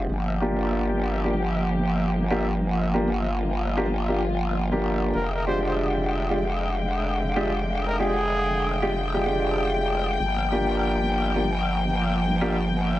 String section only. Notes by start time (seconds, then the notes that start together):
0.09 F3 A#3 G4
2.63 F4
5.15 D3 G#3 G5
10.20 F3 A#3